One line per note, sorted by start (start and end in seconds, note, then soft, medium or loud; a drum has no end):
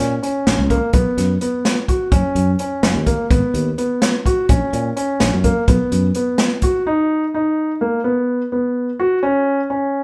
0.00 0.18 A#2 medium
0.00 0.12 C#4 medium
0.23 0.59 C#4 medium
0.23 closed hi-hat medium
0.47 0.56 A#1 medium
0.47 snare medium
0.47 closed hi-hat medium
0.59 0.77 C#2 medium
0.70 0.89 A#3 medium
0.70 kick medium
0.70 closed hi-hat soft
0.93 1.03 B1 medium
0.93 1.30 B3 medium
0.93 kick medium
0.93 closed hi-hat medium
1.17 1.36 F#2 medium
1.17 snare soft
1.17 closed hi-hat medium
1.41 1.78 B3 medium
1.41 closed hi-hat medium
1.65 snare medium
1.65 closed hi-hat medium
1.88 2.07 F#4 medium
1.88 kick medium
1.88 closed hi-hat medium
2.12 2.21 F#1 medium
2.12 2.49 C#4 medium
2.12 kick medium
2.12 closed hi-hat medium
2.35 2.54 F#2 medium
2.35 closed hi-hat medium
2.59 2.96 C#4 medium
2.59 closed hi-hat medium
2.83 2.93 F#1 medium
2.83 snare loud
2.83 closed hi-hat medium
2.95 3.14 D#2 medium
3.06 3.25 A#3 medium
3.06 kick medium
3.06 closed hi-hat soft
3.31 3.40 G#1 medium
3.31 3.67 B3 medium
3.31 kick loud
3.31 closed hi-hat medium
3.54 3.73 D#2 medium
3.54 closed hi-hat medium
3.78 4.15 B3 medium
3.78 closed hi-hat soft
4.02 snare loud
4.02 closed hi-hat medium
4.26 4.44 F#4 medium
4.26 kick medium
4.26 closed hi-hat soft
4.49 4.59 A#1 medium
4.49 4.86 C#4 medium
4.49 kick medium
4.49 closed hi-hat medium
4.73 4.92 A#2 medium
4.73 closed hi-hat medium
4.96 5.33 C#4 medium
4.96 closed hi-hat medium
5.20 5.30 A#1 medium
5.20 snare medium
5.20 closed hi-hat medium
5.33 5.51 F#2 medium
5.44 5.62 A#3 medium
5.44 kick medium
5.44 closed hi-hat medium
5.68 5.77 B1 medium
5.68 6.05 B3 medium
5.68 kick medium
5.68 closed hi-hat medium
5.92 6.10 F#2 medium
5.92 closed hi-hat medium
6.15 6.52 B3 medium
6.15 closed hi-hat soft
6.38 snare medium
6.38 closed hi-hat medium
6.62 6.81 F#4 medium
6.62 kick medium
6.62 closed hi-hat soft
6.87 7.23 D#4 medium
7.34 7.71 D#4 medium
7.81 7.99 A#3 medium
8.04 8.41 B3 medium
8.52 8.89 B3 medium
8.99 9.18 F#4 medium
9.23 9.59 C#4 medium
9.70 10.04 C#4 medium